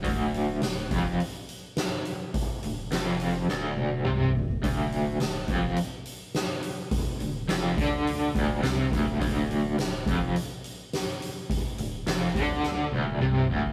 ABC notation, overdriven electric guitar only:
X:1
M:4/4
L:1/8
Q:1/4=105
K:Dm
V:1 name="Overdriven electric guitar" clef=bass
D,,2 D,, F,, z4 | z D,, F,,2 D,,2 C, D,, | D,,2 D,, F,, z4 | z D,, F,, D,2 D,, C, D,, |
D,,2 D,, F,, z4 | z D,, F,, D,2 D,, C, D,, |]